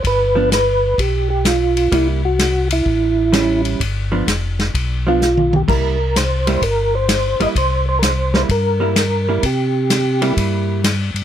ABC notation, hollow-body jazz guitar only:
X:1
M:4/4
L:1/8
Q:"Swing" 1/4=128
K:Cmix
V:1 name="Hollow-body jazz guitar"
z [F,=B,D] z6 | [G,B,E] z4 z [G,^CE]2 | z [F,=B,D] z3 [F,B,D] z2 | [G,B,E] z2 [G,B,E] z3 [G,B,E] |
z3 [G,B,E] z [G,B,E] z [G,B,E] | z3 [G,B,E]3 z2 |]